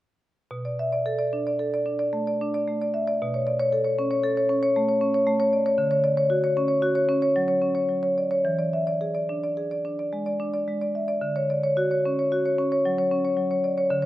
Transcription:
0.51 3.16 B2 soft
0.65 0.87 D5 soft
0.79 0.92 E5 soft
0.92 1.14 D5 soft
1.06 1.27 A4 soft
1.19 1.40 D5 soft
1.33 1.54 D4 soft
1.47 1.68 D5 soft
1.59 1.81 A4 soft
1.74 1.95 D5 soft
1.86 2.07 D4 soft
1.99 2.21 D5 soft
2.13 2.34 A3 soft
2.27 2.48 D5 soft
2.41 2.62 D4 soft
2.54 2.75 D5 soft
2.68 2.89 A3 soft
2.81 3.02 D5 soft
2.94 3.07 E5 soft
3.07 3.20 D5 soft
3.22 5.74 B2 medium
3.34 3.54 C#5 soft
3.47 3.59 D5 soft
3.60 3.80 C#5 soft
3.72 3.92 A4 soft
3.85 4.05 C#5 soft
3.99 4.18 C#4 soft
4.11 4.31 C#5 soft
4.24 4.44 A4 soft
4.37 4.57 C#5 soft
4.49 4.70 C#4 soft
4.63 4.83 C#5 soft
4.76 4.96 A3 soft
4.89 5.09 C#5 soft
5.01 5.21 C#4 soft
5.14 5.34 C#5 soft
5.27 5.47 A3 soft
5.40 5.60 C#5 soft
5.53 5.65 D5 soft
5.66 5.78 C#5 soft
5.78 8.41 D3 medium
5.91 6.11 C#5 soft
6.04 6.16 D5 soft
6.17 6.37 C#5 soft
6.30 6.50 F#4 soft
6.44 6.64 C#5 soft
6.57 6.77 C#4 soft
6.68 6.90 C#5 soft
6.82 7.03 F#4 soft
6.95 7.17 C#5 soft
7.09 7.30 C#4 soft
7.22 7.43 C#5 soft
7.36 7.57 F#3 soft
7.48 7.70 C#5 soft
7.61 7.83 C#4 soft
7.75 7.97 C#5 soft
7.89 8.11 F#3 soft
8.03 8.25 C#5 soft
8.18 8.31 D5 soft
8.31 8.45 C#5 soft
8.45 11.18 E3 soft
8.59 8.81 D5 soft
8.73 8.87 E5 soft
8.87 9.09 D5 soft
9.01 9.23 G#4 soft
9.15 9.37 D5 soft
9.29 9.51 D4 soft
9.44 9.65 D5 soft
9.57 9.79 G#4 soft
9.71 9.93 D5 soft
9.85 10.07 D4 soft
9.99 10.20 D5 soft
10.13 10.34 G#3 soft
10.26 10.48 D5 soft
10.40 10.62 D4 soft
10.54 10.75 D5 soft
10.68 10.89 G#3 soft
10.81 11.03 D5 soft
10.95 11.09 E5 soft
11.08 11.22 D5 soft
11.21 13.85 D3 soft
11.36 11.58 C#5 soft
11.50 11.64 D5 soft
11.64 11.85 C#5 soft
11.77 11.99 F#4 soft
11.91 12.13 C#5 soft
12.06 12.26 C#4 soft
12.19 12.40 C#5 soft
12.32 12.53 F#4 soft
12.46 12.66 C#5 soft
12.58 12.79 C#4 soft
12.72 12.93 C#5 soft
12.85 13.06 F#3 soft
12.98 13.19 C#5 soft
13.11 13.32 C#4 soft
13.25 13.45 C#5 soft
13.37 13.58 F#3 soft
13.51 13.71 C#5 soft
13.64 13.77 D5 soft
13.78 13.90 C#5 soft
13.90 14.06 D3 medium
14.02 14.06 C#5 soft

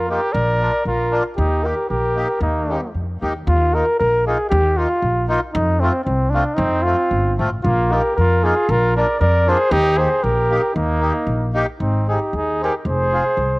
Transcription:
0.00 0.16 F2 medium
0.08 0.20 A#3 medium
0.08 0.20 D#4 medium
0.08 0.21 F4 medium
0.08 0.34 G4 medium
0.08 0.33 A#4 medium
0.32 0.68 A#1 loud
0.32 0.85 A#4 loud
0.32 0.84 D5 medium
0.60 0.71 A#3 medium
0.60 0.72 D4 soft
0.60 0.72 F4 medium
0.85 1.19 A#1 medium
0.85 1.23 F4 medium
0.85 1.22 A#4 medium
1.11 1.23 A#3 medium
1.11 1.23 D4 medium
1.11 1.24 F4 medium
1.36 1.72 D#2 loud
1.36 1.68 D#4 medium
1.36 1.65 G4 medium
1.62 1.74 A#3 medium
1.62 1.75 D#4 medium
1.62 1.75 G4 medium
1.62 1.88 A#4 medium
1.66 1.89 G4 medium
1.89 2.24 A#1 medium
1.89 2.38 G4 medium
1.89 2.38 A#4 medium
2.15 2.27 A#3 medium
2.15 2.27 D#4 medium
2.15 2.28 G4 medium
2.41 2.75 D#2 loud
2.41 2.91 A#3 medium
2.41 2.91 D#4 medium
2.69 2.80 A#3 medium
2.69 2.81 D#4 soft
2.69 2.81 G4 medium
2.94 3.20 F2 medium
3.21 3.45 D#2 medium
3.21 3.33 A#3 medium
3.21 3.33 D#4 medium
3.21 3.34 G4 medium
3.47 3.81 D#2 loud
3.47 3.76 F4 loud
3.73 3.85 A#3 medium
3.73 3.85 D#4 medium
3.73 3.86 F4 medium
3.73 3.99 A#4 loud
4.00 4.34 A#1 medium
4.00 4.25 A#4 loud
4.25 4.37 A#3 medium
4.25 4.38 D#4 medium
4.25 4.38 F4 medium
4.25 4.49 G#4 medium
4.50 4.85 D#2 loud
4.50 4.79 G4 loud
4.76 4.88 A#3 medium
4.76 4.88 D#4 medium
4.76 5.29 F4 loud
4.76 4.89 F4 medium
5.02 5.36 A#1 medium
5.28 5.39 A#3 medium
5.28 5.40 D#4 medium
5.28 5.40 F4 loud
5.52 5.88 F2 loud
5.52 5.82 D#4 loud
5.80 5.92 A3 medium
5.80 6.03 C4 medium
5.80 5.92 C4 medium
5.80 5.93 F4 medium
6.04 6.40 C2 medium
6.04 6.31 C4 medium
6.30 6.44 A3 medium
6.30 6.56 D4 medium
6.34 6.44 C4 medium
6.34 6.44 F4 medium
6.54 6.92 F2 loud
6.54 6.85 C4 loud
6.54 6.84 D#4 loud
6.82 6.96 A3 medium
6.82 7.38 C4 medium
6.82 6.96 C4 medium
6.82 7.37 F4 medium
6.87 6.97 F4 medium
7.11 7.36 G1 medium
7.38 7.61 A1 medium
7.38 7.49 A3 medium
7.38 7.50 C4 medium
7.38 7.50 F4 medium
7.63 7.98 A#1 loud
7.63 7.96 A#3 medium
7.63 7.93 F4 medium
7.89 8.01 A#3 medium
7.89 8.02 D#4 medium
7.89 8.02 F4 medium
7.89 8.15 A#4 medium
7.94 8.17 G4 medium
8.16 8.51 F2 medium
8.16 8.46 F4 medium
8.16 8.45 A#4 medium
8.42 8.54 A#3 medium
8.42 8.55 D#4 medium
8.42 8.55 F4 medium
8.42 8.72 G#4 loud
8.46 8.69 F4 medium
8.69 9.02 A#1 loud
8.69 8.96 F4 loud
8.69 8.97 A#4 loud
8.96 9.06 A#3 medium
8.96 9.07 D4 medium
8.96 9.07 F4 medium
8.96 9.19 A#4 medium
8.96 9.19 D5 medium
9.20 9.54 F2 medium
9.20 9.51 A#4 loud
9.20 9.50 D5 loud
9.46 9.57 A#3 medium
9.46 9.58 D4 medium
9.46 9.58 F4 medium
9.46 9.72 G#4 loud
9.46 9.73 C5 loud
9.71 10.05 D#2 loud
9.71 9.99 D#4 loud
9.71 10.00 G4 loud
9.96 10.08 A#3 medium
9.96 10.09 D#4 medium
9.96 10.09 G4 medium
9.96 10.25 G#4 medium
9.96 10.25 C5 loud
10.23 10.57 A#1 medium
10.23 10.75 G4 medium
10.23 10.74 A#4 loud
10.50 10.61 A#3 medium
10.50 10.62 D#4 medium
10.50 10.62 G4 medium
10.74 11.09 D#2 loud
10.74 11.52 A#3 medium
10.74 11.51 D#4 medium
10.99 11.12 A#3 medium
10.99 11.13 D#4 medium
10.99 11.13 G4 medium
11.27 11.61 A#1 medium
11.53 11.65 A#3 medium
11.53 11.66 D#4 medium
11.53 11.66 G4 loud
11.79 12.15 G#1 medium
11.79 12.06 C4 medium
11.79 12.06 D#4 medium
12.08 12.19 C4 medium
12.08 12.19 D#4 medium
12.08 12.36 D#4 medium
12.08 12.37 G4 medium
12.08 12.20 G#4 medium
12.33 12.67 D#2 medium
12.33 12.62 D#4 medium
12.33 12.62 G#4 medium
12.60 12.72 C4 medium
12.60 12.72 D#4 medium
12.60 12.74 G4 medium
12.60 12.73 G#4 medium
12.60 12.75 A#4 medium
12.85 13.19 F1 loud
12.85 13.59 G#4 medium
12.85 13.59 C5 loud
13.13 13.24 C4 medium
13.13 13.24 F4 medium
13.13 13.25 G#4 medium
13.37 13.59 C2 medium

